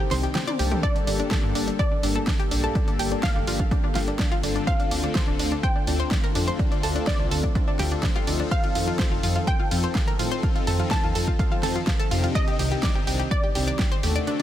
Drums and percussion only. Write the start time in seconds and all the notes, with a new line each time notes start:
0.11 snare, open hi-hat
0.24 closed hi-hat
0.35 snare, closed hi-hat, high tom
0.48 closed hi-hat, high tom
0.59 open hi-hat
0.72 closed hi-hat, mid tom
0.83 kick, closed hi-hat
0.96 closed hi-hat
1.07 open hi-hat
1.20 closed hi-hat
1.31 kick, snare, closed hi-hat
1.55 open hi-hat
1.68 closed hi-hat
1.79 kick, closed hi-hat
2.03 open hi-hat
2.16 closed hi-hat
2.27 kick, snare, closed hi-hat
2.40 closed hi-hat
2.51 open hi-hat
2.64 closed hi-hat
2.75 kick, closed hi-hat
2.88 closed hi-hat
2.99 open hi-hat
3.12 closed hi-hat
3.23 kick, snare, closed hi-hat
3.47 open hi-hat
3.60 kick
3.71 kick, closed hi-hat
3.95 snare, open hi-hat
4.08 closed hi-hat
4.19 kick, snare, closed hi-hat
4.32 closed hi-hat
4.43 open hi-hat
4.56 closed hi-hat
4.67 kick, closed hi-hat
4.80 closed hi-hat
4.91 open hi-hat
5.04 closed hi-hat
5.15 kick, snare, closed hi-hat
5.39 open hi-hat
5.52 closed hi-hat
5.63 kick, closed hi-hat
5.87 open hi-hat
6.00 closed hi-hat
6.11 kick, snare, closed hi-hat
6.24 closed hi-hat
6.35 open hi-hat
6.48 closed hi-hat
6.59 kick, closed hi-hat
6.72 closed hi-hat
6.83 open hi-hat
6.96 closed hi-hat
7.07 kick, snare, closed hi-hat
7.31 open hi-hat
7.44 kick, closed hi-hat
7.55 kick, closed hi-hat
7.79 snare, open hi-hat
7.92 closed hi-hat
8.03 kick, snare, closed hi-hat
8.16 closed hi-hat
8.27 open hi-hat
8.51 kick, closed hi-hat
8.64 closed hi-hat
8.75 open hi-hat
8.88 closed hi-hat
8.99 kick, snare, closed hi-hat
9.23 open hi-hat
9.36 closed hi-hat
9.47 kick, closed hi-hat
9.71 open hi-hat
9.95 kick, snare, closed hi-hat
10.08 closed hi-hat
10.19 open hi-hat
10.43 kick, closed hi-hat
10.56 closed hi-hat
10.67 open hi-hat
10.79 closed hi-hat
10.91 kick, snare, closed hi-hat
11.15 open hi-hat
11.28 kick
11.39 kick, closed hi-hat
11.63 snare, open hi-hat
11.76 closed hi-hat
11.87 kick, snare, closed hi-hat
12.00 closed hi-hat
12.11 open hi-hat
12.24 closed hi-hat
12.35 kick, closed hi-hat
12.48 closed hi-hat
12.59 open hi-hat
12.72 closed hi-hat
12.83 kick, snare, closed hi-hat
13.07 open hi-hat
13.20 closed hi-hat
13.31 kick, closed hi-hat
13.55 open hi-hat
13.68 closed hi-hat
13.79 kick, snare, closed hi-hat
13.92 closed hi-hat
14.03 open hi-hat
14.16 closed hi-hat
14.27 closed hi-hat